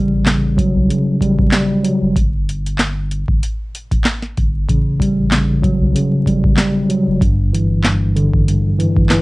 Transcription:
Already playing: A1 C#3 G3
0.26 C#3, snare, clap, closed hi-hat
0.57 F#3, kick, closed hi-hat
0.76 B1
0.89 C#3, closed hi-hat
1.21 A1 G3, kick, closed hi-hat
1.39 kick
1.52 G3, snare, clap, closed hi-hat
1.83 F#3, closed hi-hat
2.02 F#1
2.16 G1, kick, closed hi-hat
2.49 closed hi-hat
2.66 closed hi-hat
2.79 snare, clap, closed hi-hat
3.11 closed hi-hat
3.28 G1, kick
3.43 closed hi-hat
3.75 closed hi-hat
3.91 E1, kick, closed hi-hat
4.04 snare, clap, closed hi-hat
4.22 snare
4.37 G1, kick, closed hi-hat
4.68 A1 C#3, kick, closed hi-hat
5.00 G3, kick, closed hi-hat
5.31 C#3, snare, clap, closed hi-hat
5.62 F#3, kick, closed hi-hat
5.81 B1
5.95 C#3, closed hi-hat
6.26 A1 G3, kick, closed hi-hat
6.44 kick
6.57 G3, snare, clap, closed hi-hat
6.89 F#3, closed hi-hat
7.07 F#1
7.21 G1 G2, kick, closed hi-hat
7.53 E3, closed hi-hat
7.84 G2, snare, clap, closed hi-hat
8.16 D3, closed hi-hat
8.34 G1, kick
8.48 G2, closed hi-hat
8.78 E3, closed hi-hat
8.97 E1, kick
9.10 E3, snare, clap, closed hi-hat

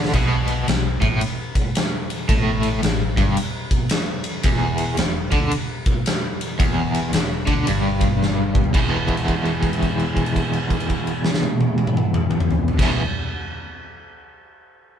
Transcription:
Already playing: D2 D3
0.05 snare
0.13 B1 B2, kick, ride, crash
0.48 ride
0.68 B1 B2, snare, ride
1.01 A1 A2, kick, ride
1.21 ride
1.55 kick, ride
1.75 snare, ride
2.10 ride
2.29 A1 A2, kick, ride
2.63 ride
2.83 A1 A2, snare, ride
3.17 G1 G2, kick, ride
3.37 ride
3.71 kick, ride
3.89 snare, ride
4.24 ride
4.43 E1 E2, kick, ride
4.78 ride
4.97 E1 E2, snare, ride
5.31 D2 D3, kick, ride
5.51 ride
5.86 kick, ride
6.06 snare, ride
6.41 ride
6.59 E1 E2, kick, ride
6.95 ride
7.13 E1 E2, snare, ride
7.47 D2 D3, kick, ride
7.66 G1 G2, ride
8.01 kick, ride
8.23 snare
8.55 kick
8.64 floor tom
8.73 E1 E2 B2 E3, kick, crash
9.08 kick, crash
9.17 crash
9.28 kick, crash
9.45 crash
9.63 kick, crash
9.73 crash
9.83 kick, crash
9.99 crash
10.17 kick, crash
10.26 crash
10.36 kick, crash
10.53 crash
10.70 kick, crash
10.80 crash
10.90 kick, crash
11.07 crash
11.25 snare
11.34 snare
11.43 high tom
11.60 high tom
11.78 high tom
11.87 mid tom
11.97 mid tom
12.14 mid tom
12.31 mid tom
12.40 mid tom
12.50 floor tom
12.68 floor tom
12.78 E1 E2 B2 E3, kick, snare, crash

